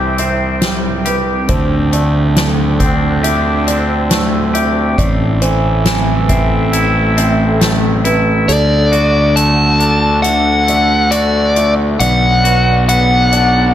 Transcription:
Already playing: C2 C3 E3 C4 G4 E5 G5
0.18 C4 E5, closed hi-hat
0.62 G3, snare, closed hi-hat
1.05 G4 B4, closed hi-hat
1.49 D2 D3 C4 D4 C5, kick, closed hi-hat
1.93 A3 D5, closed hi-hat
2.36 D3, snare, closed hi-hat
2.80 C4, kick, closed hi-hat
3.23 G4 E5, closed hi-hat
3.67 C4 D5, closed hi-hat
4.10 A3, snare, closed hi-hat
4.54 G4 E5, closed hi-hat
4.98 A1 A2 A3 A4 D5 E5, kick, closed hi-hat
5.41 E3 C5, closed hi-hat
5.85 E3, snare, closed hi-hat
6.29 C4 E5, kick, closed hi-hat
6.73 E4, closed hi-hat
7.17 C4 E5, closed hi-hat
7.61 A3, snare, closed hi-hat
8.05 E4 B4, closed hi-hat
8.48 D2 D3 D4 A4 D5 F#5, closed hi-hat
8.92 F#4 D5, closed hi-hat
9.36 A3 A5, closed hi-hat
9.80 D4, closed hi-hat
10.22 D3 E5 F#5, closed hi-hat
10.68 A3 D5, closed hi-hat
11.11 F#4 D5, closed hi-hat
11.56 A3 E5, closed hi-hat
11.99 B1 B2 B3 D5 F#5, closed hi-hat
12.44 F#4 B4, closed hi-hat
12.89 B3 F#5, closed hi-hat
13.32 D4 D5, closed hi-hat

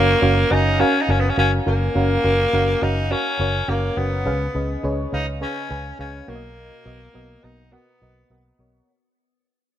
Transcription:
Already playing: F#1 A#3 C#4 F#4 A#4 C#5 F5
0.22 F#1 C#4 F#4 A#4 F5
0.51 F#1 C#4 D#4 F#4 A#4 G#5
0.79 C#4 F#4 A#4 F5
1.02 D#4
1.08 F#1 C#4 F#4 A#4 G#5
1.20 B3
1.29 C#4
1.37 F#1 C#4 F#4 A#4 F5
1.66 F#1 A#3 C#4 F#4 A#4 F5
1.95 F#1 C#4 F#4 A#4 F5
2.24 F#1 C#4 F#4 A#4 F5
2.53 F#1 C#4 F#4 A#4 F5
2.82 F#1 C#4 D#4 F#4 A#4 F5
3.11 C#4 F#4 A#4 C#5
3.39 F#1 C#4 F#4 A#4 C#5
3.68 F#1 A#3 C#4 F#4 A#4 F5
3.97 F#1 B3 C#4 F#4 A#4 F#5
4.26 C#2 C#3 C#4 G#4 B4 F5
4.55 C#2 C#4 G#4 B4 D#5
4.83 C#2 C#4 G#4 B4 C#5
5.12 C#2 C#4 D#4 G#4 B4 F5
5.41 C#4 G#4 B4 C#5
5.70 C#2 C#4 G#4 B4 G#5
5.99 C#2 C#4 G#4 B4 F5
6.27 B1 B2 A#3 F#4 A#4 C#5
6.35 D#5
6.85 B1 B3 F#4 A#4 D#5
7.14 B1 B3 F#4 A#4 D#5
7.43 B1 B3 D#4 F#4 A#4 D#5
7.72 B3 F#4 A#4 F#5
8.01 B1 B3 F#4 A#4 D#5
8.30 B1 B3 F#4 A#4 D#5
8.59 B1 B3 F#4 A#4 C#5

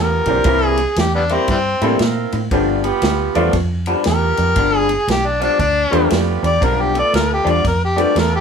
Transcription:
Already playing: E2 G3 B3 F4 G4 A#4
0.26 B1 E3 A#3 C4 D4 G4, muted clean electric guitar stroke, kick, ride
0.44 C2 C3 E3 G3 A#3 C4 D4 E4 G4, kick, ride
0.66 G#4
0.78 muted clean electric guitar stroke, ride
0.96 E2 G4, muted clean electric guitar stroke, snare, ride
1.15 G3 B3 D4
1.29 C3 G3 A#3 C4 E4, ride
1.48 G2 E3 G3 C4, muted clean electric guitar stroke, kick, snare, ride
1.81 A2 C3 E3 G3 A#3 C4 D4 E4 A4 A#4, ride
1.99 A#2 A#3 C4 E4 A#4, muted clean electric guitar stroke, snare, ride
2.32 A2, muted clean electric guitar stroke, ride
2.51 G1 G2 F3 A3 B3 D4 G4, kick, ride
2.83 G3 B3 F4 G4, muted clean electric guitar stroke, ride
3.02 D2, muted clean electric guitar stroke, snare, ride
3.35 E2 G2 F3 A3 B3 D4 F4, ride
3.53 F2, muted clean electric guitar stroke, kick, snare, ride
3.86 G2 F3 B3 D4, ride
4.04 E2 G3 B3 F4 G4 A#4, muted clean electric guitar stroke, snare, ride
4.37 F2, muted clean electric guitar stroke, ride
4.56 G1 G2 F3 B3 D4, kick, ride
4.78 G#4
4.89 muted clean electric guitar stroke, ride
5.08 B1 G4, muted clean electric guitar stroke, snare, ride
5.27 D4
5.40 G2 F3 B3 D4, ride
5.59 D2 D4, muted clean electric guitar stroke, kick, ride
5.90 E2 G2 F3 G3 A3 B3 D4 F4 G4, ride
6.09 F2 G3 B3 F4 G4, muted clean electric guitar stroke, snare, ride
6.43 E2 D5, muted clean electric guitar stroke, ride
6.61 B1 G2 F3 B3 D4 A#4, kick, ride
6.82 G4
6.94 A3 B3 F4 A4, muted clean electric guitar stroke, ride
6.99 D5
7.13 D2 A#4, muted clean electric guitar stroke, snare, ride
7.34 G4
7.45 E2 G2 F3 B3 D4, ride
7.50 D5
7.63 F2, muted clean electric guitar stroke, kick, snare, ride
7.68 A#4
7.85 G4
7.96 G2 F3 A3 B3 D4 G4, ride
8.01 D5
8.15 E2 A3 B3 F4 A4, muted clean electric guitar stroke, snare, ride
8.19 A#4
8.36 G4

